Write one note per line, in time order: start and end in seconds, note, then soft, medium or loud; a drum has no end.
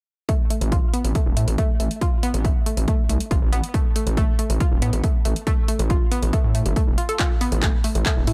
0.29 0.33 A3 loud
0.29 kick loud
0.29 closed hi-hat medium
0.50 0.54 A3 medium
0.50 closed hi-hat medium
0.61 0.79 A1 loud
0.61 closed hi-hat medium
0.72 0.78 F4 medium
0.72 kick loud
0.72 closed hi-hat medium
0.94 1.00 B3 loud
0.94 closed hi-hat medium
1.04 1.13 A1 medium
1.04 closed hi-hat medium
1.15 1.19 A3 medium
1.15 kick loud
1.15 closed hi-hat medium
1.26 1.35 E1 loud
1.37 1.46 A2 medium
1.37 1.41 A3 medium
1.37 closed hi-hat medium
1.48 1.56 A1 loud
1.48 closed hi-hat medium
1.58 1.62 A3 loud
1.58 kick loud
1.58 closed hi-hat medium
1.80 1.89 A1 medium
1.80 1.84 A3 medium
1.80 closed hi-hat medium
1.91 closed hi-hat medium
2.01 2.07 F4 medium
2.01 kick loud
2.01 closed hi-hat medium
2.23 2.29 B3 loud
2.23 closed hi-hat medium
2.34 2.51 A1 loud
2.34 closed hi-hat medium
2.45 2.49 A3 medium
2.45 kick loud
2.45 closed hi-hat medium
2.66 2.70 A3 medium
2.66 closed hi-hat loud
2.77 2.86 A1 medium
2.77 closed hi-hat medium
2.88 2.92 A3 loud
2.88 kick loud
2.88 closed hi-hat medium
3.09 3.18 C2 medium
3.09 3.13 A3 medium
3.09 closed hi-hat medium
3.20 closed hi-hat medium
3.31 3.40 A1 medium
3.31 3.37 F4 medium
3.31 kick loud
3.31 closed hi-hat medium
3.42 3.50 A1 medium
3.53 3.61 A1 medium
3.53 3.59 B3 loud
3.53 closed hi-hat medium
3.64 closed hi-hat medium
3.74 3.78 A3 medium
3.74 kick loud
3.74 closed hi-hat medium
3.96 4.00 A3 medium
3.96 closed hi-hat loud
4.07 4.24 A1 loud
4.07 closed hi-hat medium
4.17 4.21 A3 loud
4.17 kick loud
4.17 closed hi-hat medium
4.39 4.43 A3 medium
4.39 closed hi-hat loud
4.50 4.58 A1 loud
4.50 closed hi-hat medium
4.60 4.66 F4 medium
4.60 kick loud
4.60 closed hi-hat medium
4.71 4.80 E1 loud
4.82 4.91 A2 loud
4.82 4.88 B3 loud
4.82 closed hi-hat medium
4.93 5.02 A1 loud
4.93 closed hi-hat medium
5.04 5.08 A3 medium
5.04 kick loud
5.04 closed hi-hat medium
5.25 5.34 A1 medium
5.25 5.29 A3 medium
5.25 closed hi-hat medium
5.36 closed hi-hat medium
5.47 5.51 A3 loud
5.47 kick loud
5.47 closed hi-hat medium
5.68 5.72 A3 medium
5.68 closed hi-hat medium
5.79 5.97 A1 loud
5.79 closed hi-hat medium
5.90 5.96 F4 medium
5.90 kick loud
5.90 closed hi-hat medium
6.12 6.18 B3 loud
6.12 closed hi-hat medium
6.22 6.31 A1 medium
6.22 closed hi-hat medium
6.33 6.37 A3 medium
6.33 kick loud
6.33 closed hi-hat medium
6.44 6.61 A2 medium
6.55 6.59 A3 medium
6.55 closed hi-hat medium
6.66 6.74 G1 loud
6.66 closed hi-hat medium
6.76 6.80 A3 medium
6.76 kick loud
6.76 closed hi-hat medium
6.87 6.96 E1 medium
6.98 7.00 F4 medium
6.98 closed hi-hat medium
7.09 7.13 A4 medium
7.09 closed hi-hat medium
7.19 7.25 F4 medium
7.19 kick loud
7.19 clap loud
7.19 closed hi-hat medium
7.41 7.47 B3 loud
7.41 open hi-hat loud
7.52 7.69 A1 loud
7.52 closed hi-hat medium
7.63 7.67 A3 medium
7.63 kick loud
7.63 clap loud
7.63 closed hi-hat medium
7.84 7.88 A3 medium
7.84 open hi-hat loud
7.95 8.04 A1 medium
7.95 closed hi-hat medium
8.06 8.10 A3 medium
8.06 kick loud
8.06 clap loud
8.06 closed hi-hat medium
8.17 8.25 E1 loud
8.27 8.33 A2 loud
8.27 8.33 E4 medium
8.27 open hi-hat loud